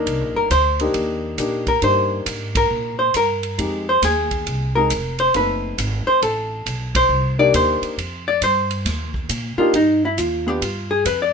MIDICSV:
0, 0, Header, 1, 6, 480
1, 0, Start_track
1, 0, Key_signature, -3, "minor"
1, 0, Tempo, 439560
1, 66, Time_signature, 4, 2, 24, 8
1, 12375, End_track
2, 0, Start_track
2, 0, Title_t, "Hollow-body jazz guitar"
2, 0, Program_c, 0, 26
2, 398, Note_on_c, 0, 70, 67
2, 550, Note_off_c, 0, 70, 0
2, 561, Note_on_c, 0, 72, 76
2, 1001, Note_off_c, 0, 72, 0
2, 1838, Note_on_c, 0, 70, 69
2, 1991, Note_off_c, 0, 70, 0
2, 2007, Note_on_c, 0, 72, 72
2, 2445, Note_off_c, 0, 72, 0
2, 2807, Note_on_c, 0, 70, 77
2, 3242, Note_off_c, 0, 70, 0
2, 3264, Note_on_c, 0, 72, 75
2, 3424, Note_off_c, 0, 72, 0
2, 3457, Note_on_c, 0, 70, 73
2, 4194, Note_off_c, 0, 70, 0
2, 4248, Note_on_c, 0, 72, 86
2, 4398, Note_off_c, 0, 72, 0
2, 4419, Note_on_c, 0, 68, 64
2, 5155, Note_off_c, 0, 68, 0
2, 5192, Note_on_c, 0, 70, 76
2, 5635, Note_off_c, 0, 70, 0
2, 5677, Note_on_c, 0, 72, 78
2, 5832, Note_off_c, 0, 72, 0
2, 5858, Note_on_c, 0, 71, 64
2, 6594, Note_off_c, 0, 71, 0
2, 6629, Note_on_c, 0, 72, 91
2, 6788, Note_off_c, 0, 72, 0
2, 6803, Note_on_c, 0, 69, 54
2, 7547, Note_off_c, 0, 69, 0
2, 7602, Note_on_c, 0, 72, 82
2, 8040, Note_off_c, 0, 72, 0
2, 8074, Note_on_c, 0, 74, 96
2, 8231, Note_off_c, 0, 74, 0
2, 8251, Note_on_c, 0, 72, 65
2, 8990, Note_off_c, 0, 72, 0
2, 9040, Note_on_c, 0, 74, 79
2, 9194, Note_off_c, 0, 74, 0
2, 9213, Note_on_c, 0, 72, 70
2, 9951, Note_off_c, 0, 72, 0
2, 10462, Note_on_c, 0, 65, 71
2, 10623, Note_off_c, 0, 65, 0
2, 10654, Note_on_c, 0, 63, 59
2, 10946, Note_off_c, 0, 63, 0
2, 10977, Note_on_c, 0, 64, 59
2, 11128, Note_off_c, 0, 64, 0
2, 11128, Note_on_c, 0, 65, 68
2, 11441, Note_off_c, 0, 65, 0
2, 11441, Note_on_c, 0, 67, 84
2, 11604, Note_off_c, 0, 67, 0
2, 11604, Note_on_c, 0, 65, 56
2, 11900, Note_off_c, 0, 65, 0
2, 11911, Note_on_c, 0, 68, 72
2, 12067, Note_off_c, 0, 68, 0
2, 12082, Note_on_c, 0, 71, 72
2, 12230, Note_off_c, 0, 71, 0
2, 12253, Note_on_c, 0, 74, 72
2, 12375, Note_off_c, 0, 74, 0
2, 12375, End_track
3, 0, Start_track
3, 0, Title_t, "Grand piano"
3, 0, Program_c, 1, 0
3, 0, Note_on_c, 1, 58, 66
3, 0, Note_on_c, 1, 62, 57
3, 0, Note_on_c, 1, 63, 63
3, 0, Note_on_c, 1, 70, 72
3, 520, Note_off_c, 1, 58, 0
3, 520, Note_off_c, 1, 62, 0
3, 522, Note_off_c, 1, 63, 0
3, 522, Note_off_c, 1, 70, 0
3, 878, Note_on_c, 1, 58, 60
3, 881, Note_on_c, 1, 63, 64
3, 883, Note_on_c, 1, 62, 54
3, 888, Note_on_c, 1, 67, 68
3, 1483, Note_off_c, 1, 58, 0
3, 1484, Note_off_c, 1, 63, 0
3, 1485, Note_off_c, 1, 62, 0
3, 1487, Note_off_c, 1, 67, 0
3, 1510, Note_on_c, 1, 58, 55
3, 1517, Note_on_c, 1, 62, 51
3, 1519, Note_on_c, 1, 63, 52
3, 1521, Note_on_c, 1, 67, 59
3, 1791, Note_off_c, 1, 58, 0
3, 1794, Note_off_c, 1, 62, 0
3, 1795, Note_off_c, 1, 63, 0
3, 1796, Note_off_c, 1, 67, 0
3, 1986, Note_on_c, 1, 58, 57
3, 1990, Note_on_c, 1, 62, 45
3, 1991, Note_on_c, 1, 63, 43
3, 1994, Note_on_c, 1, 67, 56
3, 3328, Note_off_c, 1, 58, 0
3, 3330, Note_off_c, 1, 62, 0
3, 3331, Note_off_c, 1, 63, 0
3, 3332, Note_off_c, 1, 67, 0
3, 3912, Note_on_c, 1, 56, 49
3, 3919, Note_on_c, 1, 60, 39
3, 3920, Note_on_c, 1, 63, 44
3, 3929, Note_on_c, 1, 67, 48
3, 4193, Note_off_c, 1, 56, 0
3, 4196, Note_off_c, 1, 60, 0
3, 4197, Note_off_c, 1, 63, 0
3, 4202, Note_off_c, 1, 67, 0
3, 5204, Note_on_c, 1, 56, 62
3, 5205, Note_on_c, 1, 60, 50
3, 5207, Note_on_c, 1, 63, 56
3, 5212, Note_on_c, 1, 68, 69
3, 5344, Note_off_c, 1, 56, 0
3, 5344, Note_off_c, 1, 60, 0
3, 5345, Note_off_c, 1, 63, 0
3, 5348, Note_off_c, 1, 68, 0
3, 5837, Note_on_c, 1, 60, 43
3, 5840, Note_on_c, 1, 57, 50
3, 5849, Note_on_c, 1, 63, 40
3, 5851, Note_on_c, 1, 69, 52
3, 7174, Note_off_c, 1, 60, 0
3, 7176, Note_off_c, 1, 57, 0
3, 7181, Note_off_c, 1, 63, 0
3, 7182, Note_off_c, 1, 69, 0
3, 8067, Note_on_c, 1, 58, 70
3, 8072, Note_on_c, 1, 63, 57
3, 8074, Note_on_c, 1, 62, 63
3, 8076, Note_on_c, 1, 67, 76
3, 8678, Note_off_c, 1, 58, 0
3, 8681, Note_off_c, 1, 63, 0
3, 8682, Note_off_c, 1, 62, 0
3, 8683, Note_off_c, 1, 67, 0
3, 10465, Note_on_c, 1, 58, 70
3, 10473, Note_on_c, 1, 63, 62
3, 10476, Note_on_c, 1, 62, 62
3, 10477, Note_on_c, 1, 67, 78
3, 10614, Note_off_c, 1, 58, 0
3, 10617, Note_off_c, 1, 63, 0
3, 10619, Note_off_c, 1, 62, 0
3, 10619, Note_off_c, 1, 67, 0
3, 11427, Note_on_c, 1, 59, 58
3, 11431, Note_on_c, 1, 62, 54
3, 11441, Note_on_c, 1, 67, 68
3, 11443, Note_on_c, 1, 65, 57
3, 11573, Note_off_c, 1, 59, 0
3, 11576, Note_off_c, 1, 62, 0
3, 11581, Note_off_c, 1, 67, 0
3, 11582, Note_off_c, 1, 65, 0
3, 12375, End_track
4, 0, Start_track
4, 0, Title_t, "Upright bass"
4, 0, Program_c, 2, 32
4, 66, Note_on_c, 2, 36, 75
4, 225, Note_off_c, 2, 36, 0
4, 225, Note_on_c, 2, 34, 51
4, 369, Note_off_c, 2, 34, 0
4, 376, Note_on_c, 2, 31, 61
4, 529, Note_off_c, 2, 31, 0
4, 548, Note_on_c, 2, 38, 92
4, 1013, Note_off_c, 2, 38, 0
4, 1025, Note_on_c, 2, 39, 81
4, 1491, Note_off_c, 2, 39, 0
4, 1504, Note_on_c, 2, 46, 72
4, 1971, Note_off_c, 2, 46, 0
4, 1986, Note_on_c, 2, 43, 70
4, 2453, Note_off_c, 2, 43, 0
4, 2466, Note_on_c, 2, 44, 82
4, 2933, Note_off_c, 2, 44, 0
4, 2949, Note_on_c, 2, 46, 68
4, 3415, Note_off_c, 2, 46, 0
4, 3434, Note_on_c, 2, 43, 70
4, 3897, Note_off_c, 2, 43, 0
4, 3910, Note_on_c, 2, 41, 74
4, 4376, Note_off_c, 2, 41, 0
4, 4391, Note_on_c, 2, 39, 90
4, 4856, Note_off_c, 2, 39, 0
4, 4876, Note_on_c, 2, 36, 73
4, 5339, Note_off_c, 2, 36, 0
4, 5356, Note_on_c, 2, 29, 76
4, 5819, Note_off_c, 2, 29, 0
4, 5834, Note_on_c, 2, 30, 69
4, 6298, Note_off_c, 2, 30, 0
4, 6312, Note_on_c, 2, 32, 83
4, 6603, Note_off_c, 2, 32, 0
4, 6791, Note_on_c, 2, 33, 75
4, 7257, Note_off_c, 2, 33, 0
4, 7272, Note_on_c, 2, 35, 85
4, 7737, Note_off_c, 2, 35, 0
4, 7742, Note_on_c, 2, 36, 81
4, 8212, Note_off_c, 2, 36, 0
4, 8231, Note_on_c, 2, 39, 90
4, 8523, Note_off_c, 2, 39, 0
4, 8705, Note_on_c, 2, 41, 73
4, 9173, Note_off_c, 2, 41, 0
4, 9188, Note_on_c, 2, 43, 83
4, 9654, Note_off_c, 2, 43, 0
4, 9664, Note_on_c, 2, 39, 71
4, 10132, Note_off_c, 2, 39, 0
4, 10147, Note_on_c, 2, 46, 86
4, 10439, Note_off_c, 2, 46, 0
4, 10627, Note_on_c, 2, 43, 67
4, 11093, Note_off_c, 2, 43, 0
4, 11108, Note_on_c, 2, 39, 86
4, 11573, Note_off_c, 2, 39, 0
4, 11591, Note_on_c, 2, 43, 74
4, 12054, Note_off_c, 2, 43, 0
4, 12067, Note_on_c, 2, 41, 87
4, 12375, Note_off_c, 2, 41, 0
4, 12375, End_track
5, 0, Start_track
5, 0, Title_t, "Muted upright bass strokes"
5, 8538, Note_on_c, 9, 29, 41
5, 8647, Note_off_c, 9, 29, 0
5, 10453, Note_on_c, 9, 29, 37
5, 10562, Note_off_c, 9, 29, 0
5, 12375, End_track
6, 0, Start_track
6, 0, Title_t, "Drums"
6, 72, Note_on_c, 9, 36, 26
6, 73, Note_on_c, 9, 51, 57
6, 181, Note_off_c, 9, 36, 0
6, 182, Note_off_c, 9, 51, 0
6, 550, Note_on_c, 9, 36, 18
6, 552, Note_on_c, 9, 44, 57
6, 552, Note_on_c, 9, 51, 65
6, 659, Note_off_c, 9, 36, 0
6, 662, Note_off_c, 9, 44, 0
6, 662, Note_off_c, 9, 51, 0
6, 868, Note_on_c, 9, 51, 42
6, 977, Note_off_c, 9, 51, 0
6, 1026, Note_on_c, 9, 51, 55
6, 1030, Note_on_c, 9, 36, 24
6, 1136, Note_off_c, 9, 51, 0
6, 1139, Note_off_c, 9, 36, 0
6, 1506, Note_on_c, 9, 44, 56
6, 1506, Note_on_c, 9, 51, 56
6, 1510, Note_on_c, 9, 36, 24
6, 1616, Note_off_c, 9, 44, 0
6, 1616, Note_off_c, 9, 51, 0
6, 1619, Note_off_c, 9, 36, 0
6, 1820, Note_on_c, 9, 51, 41
6, 1822, Note_on_c, 9, 36, 59
6, 1929, Note_off_c, 9, 51, 0
6, 1932, Note_off_c, 9, 36, 0
6, 1986, Note_on_c, 9, 51, 55
6, 1989, Note_on_c, 9, 36, 23
6, 2095, Note_off_c, 9, 51, 0
6, 2098, Note_off_c, 9, 36, 0
6, 2469, Note_on_c, 9, 44, 59
6, 2469, Note_on_c, 9, 51, 69
6, 2471, Note_on_c, 9, 36, 18
6, 2579, Note_off_c, 9, 44, 0
6, 2579, Note_off_c, 9, 51, 0
6, 2580, Note_off_c, 9, 36, 0
6, 2787, Note_on_c, 9, 36, 77
6, 2787, Note_on_c, 9, 51, 67
6, 2896, Note_off_c, 9, 36, 0
6, 2897, Note_off_c, 9, 51, 0
6, 3428, Note_on_c, 9, 44, 55
6, 3428, Note_on_c, 9, 51, 63
6, 3433, Note_on_c, 9, 36, 22
6, 3538, Note_off_c, 9, 44, 0
6, 3538, Note_off_c, 9, 51, 0
6, 3542, Note_off_c, 9, 36, 0
6, 3746, Note_on_c, 9, 51, 44
6, 3855, Note_off_c, 9, 51, 0
6, 3916, Note_on_c, 9, 36, 25
6, 3916, Note_on_c, 9, 51, 56
6, 4025, Note_off_c, 9, 36, 0
6, 4025, Note_off_c, 9, 51, 0
6, 4395, Note_on_c, 9, 44, 56
6, 4395, Note_on_c, 9, 51, 67
6, 4396, Note_on_c, 9, 36, 24
6, 4397, Note_on_c, 9, 38, 36
6, 4504, Note_off_c, 9, 44, 0
6, 4504, Note_off_c, 9, 51, 0
6, 4505, Note_off_c, 9, 36, 0
6, 4506, Note_off_c, 9, 38, 0
6, 4706, Note_on_c, 9, 51, 43
6, 4710, Note_on_c, 9, 36, 47
6, 4816, Note_off_c, 9, 51, 0
6, 4819, Note_off_c, 9, 36, 0
6, 4877, Note_on_c, 9, 36, 22
6, 4877, Note_on_c, 9, 51, 53
6, 4986, Note_off_c, 9, 36, 0
6, 4986, Note_off_c, 9, 51, 0
6, 5352, Note_on_c, 9, 44, 53
6, 5352, Note_on_c, 9, 51, 59
6, 5357, Note_on_c, 9, 36, 21
6, 5462, Note_off_c, 9, 44, 0
6, 5462, Note_off_c, 9, 51, 0
6, 5466, Note_off_c, 9, 36, 0
6, 5662, Note_on_c, 9, 51, 43
6, 5772, Note_off_c, 9, 51, 0
6, 5833, Note_on_c, 9, 51, 51
6, 5835, Note_on_c, 9, 36, 23
6, 5942, Note_off_c, 9, 51, 0
6, 5945, Note_off_c, 9, 36, 0
6, 6315, Note_on_c, 9, 44, 49
6, 6315, Note_on_c, 9, 51, 65
6, 6316, Note_on_c, 9, 36, 24
6, 6424, Note_off_c, 9, 44, 0
6, 6424, Note_off_c, 9, 51, 0
6, 6425, Note_off_c, 9, 36, 0
6, 6796, Note_on_c, 9, 51, 53
6, 6797, Note_on_c, 9, 36, 19
6, 6906, Note_off_c, 9, 36, 0
6, 6906, Note_off_c, 9, 51, 0
6, 7275, Note_on_c, 9, 36, 21
6, 7276, Note_on_c, 9, 44, 49
6, 7276, Note_on_c, 9, 51, 57
6, 7384, Note_off_c, 9, 36, 0
6, 7385, Note_off_c, 9, 44, 0
6, 7385, Note_off_c, 9, 51, 0
6, 7588, Note_on_c, 9, 36, 78
6, 7589, Note_on_c, 9, 51, 74
6, 7697, Note_off_c, 9, 36, 0
6, 7698, Note_off_c, 9, 51, 0
6, 8232, Note_on_c, 9, 36, 25
6, 8233, Note_on_c, 9, 44, 51
6, 8233, Note_on_c, 9, 51, 64
6, 8342, Note_off_c, 9, 36, 0
6, 8342, Note_off_c, 9, 44, 0
6, 8342, Note_off_c, 9, 51, 0
6, 8547, Note_on_c, 9, 51, 41
6, 8656, Note_off_c, 9, 51, 0
6, 8712, Note_on_c, 9, 36, 18
6, 8719, Note_on_c, 9, 51, 55
6, 8821, Note_off_c, 9, 36, 0
6, 8828, Note_off_c, 9, 51, 0
6, 9191, Note_on_c, 9, 36, 20
6, 9191, Note_on_c, 9, 44, 56
6, 9191, Note_on_c, 9, 51, 62
6, 9300, Note_off_c, 9, 36, 0
6, 9300, Note_off_c, 9, 44, 0
6, 9300, Note_off_c, 9, 51, 0
6, 9506, Note_on_c, 9, 51, 42
6, 9616, Note_off_c, 9, 51, 0
6, 9670, Note_on_c, 9, 36, 22
6, 9671, Note_on_c, 9, 51, 57
6, 9673, Note_on_c, 9, 38, 36
6, 9779, Note_off_c, 9, 36, 0
6, 9781, Note_off_c, 9, 51, 0
6, 9783, Note_off_c, 9, 38, 0
6, 9982, Note_on_c, 9, 36, 51
6, 10092, Note_off_c, 9, 36, 0
6, 10149, Note_on_c, 9, 44, 59
6, 10149, Note_on_c, 9, 51, 63
6, 10150, Note_on_c, 9, 36, 21
6, 10258, Note_off_c, 9, 44, 0
6, 10258, Note_off_c, 9, 51, 0
6, 10259, Note_off_c, 9, 36, 0
6, 10631, Note_on_c, 9, 36, 17
6, 10632, Note_on_c, 9, 51, 56
6, 10740, Note_off_c, 9, 36, 0
6, 10741, Note_off_c, 9, 51, 0
6, 11111, Note_on_c, 9, 36, 21
6, 11114, Note_on_c, 9, 44, 50
6, 11114, Note_on_c, 9, 51, 54
6, 11221, Note_off_c, 9, 36, 0
6, 11223, Note_off_c, 9, 44, 0
6, 11223, Note_off_c, 9, 51, 0
6, 11593, Note_on_c, 9, 36, 23
6, 11597, Note_on_c, 9, 51, 59
6, 11702, Note_off_c, 9, 36, 0
6, 11706, Note_off_c, 9, 51, 0
6, 12072, Note_on_c, 9, 36, 19
6, 12072, Note_on_c, 9, 44, 55
6, 12072, Note_on_c, 9, 51, 64
6, 12181, Note_off_c, 9, 36, 0
6, 12181, Note_off_c, 9, 44, 0
6, 12181, Note_off_c, 9, 51, 0
6, 12375, End_track
0, 0, End_of_file